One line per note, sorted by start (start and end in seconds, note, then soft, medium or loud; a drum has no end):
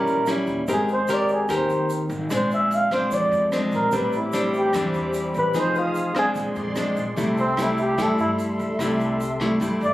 0.00 0.66 A#2 soft
0.00 0.24 G3 medium
0.00 0.24 C#4 medium
0.00 0.24 E4 medium
0.00 0.30 A#4 medium
0.07 0.45 A#1 medium
0.07 closed hi-hat soft
0.07 shaker soft
0.26 0.65 G3 medium
0.26 0.65 C#4 medium
0.26 0.65 E4 medium
0.26 cross-stick medium
0.26 closed hi-hat soft
0.26 shaker medium
0.47 0.66 D#2 loud
0.47 closed hi-hat soft
0.47 shaker soft
0.68 1.45 G#1 medium
0.68 1.47 G#3 medium
0.68 0.94 C4 medium
0.68 0.94 G4 soft
0.68 0.95 A#4 medium
0.68 kick soft
0.68 closed hi-hat soft
0.68 shaker medium
0.73 0.89 G#4 medium
0.88 closed hi-hat soft
0.88 shaker soft
0.93 1.15 C5 medium
1.08 1.46 C4 medium
1.08 1.46 G4 medium
1.08 1.46 A#4 medium
1.08 cross-stick soft
1.08 closed hi-hat soft
1.08 shaker medium
1.13 1.31 D5 medium
1.28 closed hi-hat soft
1.28 shaker soft
1.33 1.56 G#4 medium
1.49 1.68 D#2 medium
1.49 2.28 D#3 medium
1.49 2.04 C4 soft
1.49 2.04 G4 medium
1.49 2.04 A#4 medium
1.49 kick soft
1.49 cross-stick medium
1.49 closed hi-hat soft
1.49 shaker medium
1.55 1.92 C5 medium
1.69 2.07 D#2 medium
1.69 closed hi-hat soft
1.69 shaker soft
1.89 closed hi-hat soft
1.89 shaker medium
2.09 2.29 G#1 loud
2.09 closed hi-hat soft
2.09 shaker soft
2.30 3.08 A#1 medium
2.30 3.10 A#2 medium
2.30 2.88 G#3 medium
2.30 2.88 C4 medium
2.30 2.89 D4 medium
2.30 kick medium
2.30 cross-stick medium
2.30 closed hi-hat soft
2.30 shaker medium
2.35 2.52 C5 medium
2.51 2.76 E5 medium
2.51 closed hi-hat soft
2.51 shaker soft
2.71 closed hi-hat soft
2.71 shaker medium
2.75 2.92 F5 medium
2.91 3.49 G#3 medium
2.91 3.49 C4 medium
2.91 3.49 D4 medium
2.91 3.15 C5 medium
2.91 kick soft
2.91 cross-stick soft
2.91 closed hi-hat soft
2.91 shaker soft
3.11 3.30 F2 medium
3.11 3.91 F3 soft
3.11 3.53 D5 medium
3.11 kick medium
3.11 closed hi-hat soft
3.11 shaker medium
3.32 3.69 F2 medium
3.32 closed hi-hat soft
3.32 shaker soft
3.52 3.91 G#3 medium
3.52 3.91 C4 medium
3.52 3.91 D4 medium
3.52 cross-stick medium
3.52 closed hi-hat soft
3.52 shaker medium
3.72 3.91 A#1 medium
3.72 3.98 A#4 medium
3.72 kick medium
3.72 closed hi-hat soft
3.72 shaker soft
3.92 4.70 A1 medium
3.92 4.72 A2 medium
3.92 4.19 G3 medium
3.92 4.19 C4 soft
3.92 4.19 D4 medium
3.92 5.53 G4 medium
3.92 5.53 C5 medium
3.92 5.53 B5 medium
3.92 5.53 D6 medium
3.92 kick medium
3.92 closed hi-hat soft
3.92 shaker medium
3.96 4.15 B4 medium
4.12 closed hi-hat soft
4.12 shaker soft
4.16 4.52 E4 medium
4.33 4.71 G3 medium
4.33 4.71 C4 medium
4.33 4.71 D4 medium
4.33 cross-stick medium
4.33 closed hi-hat soft
4.33 shaker medium
4.54 closed hi-hat soft
4.54 shaker soft
4.58 4.75 G4 medium
4.73 4.93 E2 medium
4.73 5.53 E3 medium
4.73 5.52 G3 medium
4.73 5.52 C4 medium
4.73 5.53 D4 medium
4.73 kick medium
4.73 cross-stick medium
4.73 closed hi-hat soft
4.73 shaker medium
4.94 5.32 E2 medium
4.94 closed hi-hat soft
4.94 shaker soft
5.14 closed hi-hat soft
5.14 shaker medium
5.34 5.53 A1 medium
5.34 closed hi-hat soft
5.34 shaker soft
5.39 5.61 B4 medium
5.54 6.32 F1 medium
5.54 6.15 F3 medium
5.54 6.12 C4 medium
5.54 6.13 D#4 soft
5.54 7.16 G#4 medium
5.54 6.13 G#4 medium
5.54 6.35 F5 medium
5.54 6.35 D#6 medium
5.54 kick medium
5.54 cross-stick medium
5.54 closed hi-hat soft
5.54 shaker medium
5.59 5.80 C5 medium
5.75 6.17 F4 medium
5.75 closed hi-hat soft
5.75 shaker soft
5.95 closed hi-hat soft
5.95 shaker medium
6.15 6.73 G#3 medium
6.15 6.73 C4 medium
6.15 6.74 D4 medium
6.15 6.30 G#4 medium
6.15 cross-stick medium
6.15 closed hi-hat soft
6.15 shaker soft
6.35 6.55 A#1 medium
6.35 7.15 A#2 soft
6.35 7.17 D5 medium
6.35 7.16 C6 medium
6.35 kick medium
6.35 closed hi-hat soft
6.35 shaker medium
6.55 6.94 F2 loud
6.55 closed hi-hat soft
6.55 shaker soft
6.76 7.04 G#3 medium
6.76 7.04 C4 medium
6.76 7.04 D4 medium
6.76 cross-stick medium
6.76 closed hi-hat soft
6.76 shaker medium
6.96 7.16 A#1 loud
6.96 closed hi-hat soft
6.96 shaker soft
7.16 7.94 C2 medium
7.16 7.96 C3 medium
7.16 7.43 G3 medium
7.16 7.43 A3 medium
7.16 7.44 E4 medium
7.16 9.94 A4 medium
7.16 9.94 E5 medium
7.16 9.94 C6 medium
7.16 kick medium
7.16 closed hi-hat soft
7.16 shaker medium
7.37 7.64 C4 medium
7.37 closed hi-hat soft
7.37 shaker soft
7.57 7.95 G3 medium
7.57 7.95 A3 medium
7.57 7.95 E4 medium
7.57 cross-stick medium
7.57 closed hi-hat soft
7.57 shaker medium
7.63 7.80 E4 medium
7.77 closed hi-hat soft
7.77 shaker soft
7.82 8.04 G4 medium
7.98 8.17 G2 medium
7.98 8.77 G2 medium
7.98 8.76 G3 medium
7.98 8.76 A3 medium
7.98 8.76 E4 medium
7.98 kick medium
7.98 cross-stick medium
7.98 closed hi-hat soft
7.98 shaker medium
8.02 8.20 A4 medium
8.18 8.56 G2 medium
8.18 8.32 E4 medium
8.18 closed hi-hat soft
8.18 shaker soft
8.38 closed hi-hat soft
8.38 shaker medium
8.59 8.78 C2 medium
8.59 closed hi-hat soft
8.59 shaker soft
8.79 9.56 C2 loud
8.79 9.59 C3 medium
8.79 9.20 G3 medium
8.79 9.20 A3 medium
8.79 9.21 E4 medium
8.79 kick medium
8.79 cross-stick soft
8.79 closed hi-hat soft
8.79 shaker medium
8.99 closed hi-hat soft
8.99 shaker soft
9.20 closed hi-hat soft
9.20 shaker medium
9.40 9.57 G3 medium
9.40 9.58 A3 medium
9.40 9.58 E4 medium
9.40 kick soft
9.40 cross-stick soft
9.40 closed hi-hat soft
9.40 shaker soft
9.60 9.79 G2 medium
9.60 9.94 G2 medium
9.60 9.87 G3 medium
9.60 9.87 A3 medium
9.60 9.87 E4 medium
9.60 kick medium
9.60 closed hi-hat soft
9.60 shaker medium
9.80 9.94 G2 loud
9.80 closed hi-hat soft
9.80 shaker soft
9.84 9.94 D5 medium